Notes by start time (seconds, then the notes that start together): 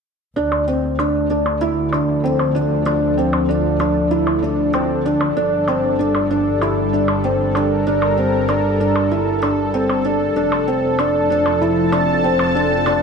0.36 D2 D3 D4
0.46 D4
0.52 percussion blips
0.68 C4
0.99 D4, percussion blips
1.11 A4
1.30 D4
1.46 percussion blips
1.61 E4
1.71 F3
1.93 D4, percussion blips
2.24 C4
2.39 percussion blips
2.55 D4
2.86 D4, percussion blips
3.18 C4
3.33 percussion blips
3.49 D4
3.80 D4, percussion blips
4.11 E4
4.27 percussion blips
4.42 D4
4.74 C4, percussion blips
5.05 D4
5.21 percussion blips
5.36 G1 G3 D4
5.68 C4, percussion blips
5.99 D4
6.15 percussion blips
6.30 D4
6.61 E4, percussion blips
6.93 D4
7.06 A#4, percussion blips
7.24 C4
7.55 D4, percussion blips
7.87 D4
8.02 percussion blips
8.18 C4
8.49 D4, percussion blips
8.80 D4
8.96 percussion blips
9.12 E4
9.43 D4, percussion blips
9.74 C4
9.89 percussion blips
10.05 D4
10.36 F1 F3 D4
10.52 percussion blips
10.68 C4
10.94 C4
10.99 D4, percussion blips
11.04 A5
11.30 D4
11.46 percussion blips
11.61 E4
11.92 D4, percussion blips
12.24 C4
12.39 percussion blips
12.55 D4
12.86 D4, percussion blips